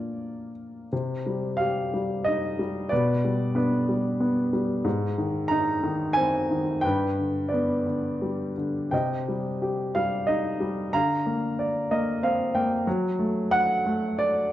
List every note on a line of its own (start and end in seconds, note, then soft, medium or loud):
0.00 0.89 A#2 soft
0.00 0.88 A#3 soft
0.00 0.88 D4 soft
0.00 0.94 F4 soft
0.00 0.51 D5 medium
0.93 2.88 C3 soft
1.26 1.92 G3 soft
1.57 2.87 G4 soft
1.57 2.27 F5 medium
1.94 2.58 G3 soft
2.25 2.90 D#4 soft
2.25 2.92 D#5 medium
2.59 2.90 G3 soft
2.89 4.82 B2 medium
2.89 3.54 B4 medium
2.89 3.56 D5 medium
3.25 3.87 G3 soft
3.55 4.19 B3 soft
3.55 4.50 D4 soft
3.55 4.49 B4 medium
3.89 4.52 G3 soft
4.20 4.84 B3 soft
4.53 4.85 G3 soft
4.84 6.79 G#2 medium
5.18 5.82 D#3 soft
5.48 6.80 D#4 medium
5.48 6.17 A#5 medium
5.83 6.49 D#3 medium
6.13 6.82 C4 medium
6.13 6.84 G#5 medium
6.51 6.83 D#3 soft
6.81 8.89 G2 medium
6.81 7.50 B4 medium
6.81 7.52 G5 medium
7.19 7.85 D3 soft
7.49 8.53 B4 soft
7.49 8.52 D5 medium
7.54 8.90 B3 soft
7.86 8.56 D3 soft
8.22 8.91 G3 soft
8.58 8.92 D3 soft
8.91 10.89 C3 soft
8.91 9.92 D#5 soft
8.91 9.97 G5 medium
9.29 9.94 G3 soft
9.62 10.89 G4 soft
9.95 10.59 G3 soft
9.95 10.29 F5 medium
10.27 10.91 D#4 soft
10.27 10.94 D#5 medium
10.60 10.92 G3 soft
10.93 12.83 D3 medium
10.93 12.19 F5 medium
10.93 12.18 A#5 medium
11.26 11.90 A#3 soft
11.59 12.83 D5 medium
11.91 12.53 A#3 soft
11.91 12.20 D#5 medium
12.23 12.85 C4 medium
12.23 12.53 F5 medium
12.55 12.86 A#3 soft
12.55 12.85 G5 medium
12.87 14.53 F#3 medium
13.19 13.84 A3 soft
13.51 14.15 F#5 medium
13.86 14.51 A3 medium
14.19 14.53 D5 medium